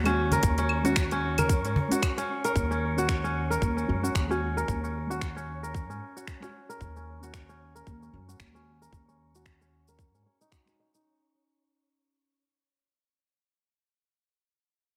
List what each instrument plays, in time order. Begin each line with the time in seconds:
Already playing: upright bass D#2, kora F#4 A#4, synth texture C#5
0.03 synth stab G#3 C#4 F#4, kora C#4, closed hi-hat, cabasa, claves
0.32 kora A#4, cajon bass, closed hi-hat, cabasa
0.43 upright bass D#2, kick, closed hi-hat, cabasa
0.58 kora C#4, cajon slap, closed hi-hat, cabasa
0.69 claves
0.83 synth stab G#3 C#4 F#4, kora F#4, closed hi-hat, cabasa
0.96 finger snap, kick, closed hi-hat, cabasa
1.11 kora C#4, closed hi-hat, cabasa
1.38 kora A#4, cajon bass, closed hi-hat, cabasa, claves
1.49 kick, closed hi-hat, cabasa
1.64 upright bass G#2, kora C#4, closed hi-hat, cabasa
1.76 cajon bass, cajon slap
1.88 synth stab G#3 C#4, kora F#4, cajon slap, closed hi-hat, cabasa
1.92 synth stab F#4
2.02 finger snap, kick, closed hi-hat, cabasa, claves
2.18 kora C#4, finger snap, closed hi-hat, cabasa
2.44 kora A#4, closed hi-hat, cabasa
2.56 upright bass D#2, kick, cabasa
2.71 kora C#4, cabasa
2.94 synth stab G#3 C#4, kora F#4, cabasa
2.98 synth stab F#4
3.09 finger snap, kick, cabasa
3.24 kora C#4, cabasa
3.50 kora A#4, cabasa
3.62 upright bass D#2, kick, cabasa
3.77 kora C#4, cabasa
3.87 upright bass F#2, synth stab G#3 C#4 F#4
4.02 synth stab G#3 C#4 F#4, kora F#4, cabasa
4.15 upright bass D#2, finger snap, kick, cabasa
4.27 synth stab G#3 C#4 F#4, kora C#4, cabasa
4.57 kora A#4, cabasa
4.68 upright bass D#2, kick, cabasa
4.84 kora C#4, cabasa
5.07 synth stab G#3 C#4, kora F#4
5.11 synth stab F#4, cabasa
5.21 finger snap, kick, cabasa
5.36 kora C#4, cabasa
5.63 kora A#4, cabasa
5.75 kick, cabasa
5.90 upright bass G#2, kora C#4, cabasa
6.16 kora F#4, cabasa
6.27 finger snap, kick, cabasa
6.40 synth stab G#3 C#4 F#4, kora C#4, finger snap, cabasa
6.69 kora A#4, cabasa
6.81 upright bass D#2, kick, cabasa
6.96 kora C#4, cabasa
7.19 synth stab G#3 C#4, kora F#4, cabasa
7.23 synth stab F#4
7.34 finger snap, kick, cabasa
7.49 kora C#4, cabasa
7.75 kora A#4, cabasa
7.87 upright bass D#2, kick, cabasa
8.03 kora C#4, cabasa
8.12 upright bass F#2, synth stab G#3 C#4 F#4
8.27 synth stab G#3 C#4 F#4, kora F#4, cabasa
8.40 upright bass D#2, finger snap, kick, cabasa
8.52 synth stab G#3 C#4 F#4, kora C#4
8.56 cabasa
8.82 kora A#4, cabasa
8.93 upright bass D#2, kick, cabasa
9.08 kora C#4, cabasa
9.32 synth stab G#3 C#4 F#4, kora F#4, cabasa
9.46 finger snap, kick, cabasa
9.61 kora C#4, cabasa
9.88 kora A#4, cabasa
9.99 kick, cabasa
10.14 upright bass G#2, kora C#4, cabasa
10.26 kora C#4
10.41 kora D#4, cabasa
10.52 kora F#4, finger snap, kick, cabasa
10.66 synth stab G#3 C#4 F#4, kora C#4, finger snap, cabasa
10.80 kora D#5
10.95 kora D#4, cabasa